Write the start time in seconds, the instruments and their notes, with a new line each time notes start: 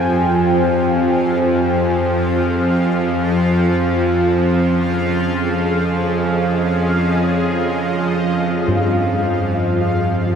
Already playing: synth drone F2 F3, analog synth pad F4 C5 G5 G#5, synth texture F4 F5
4.29 analog synth pad C#4
4.77 analog synth pad G#4
5.73 analog synth pad D#5
8.07 analog synth pad F5
8.68 kettle gongs G2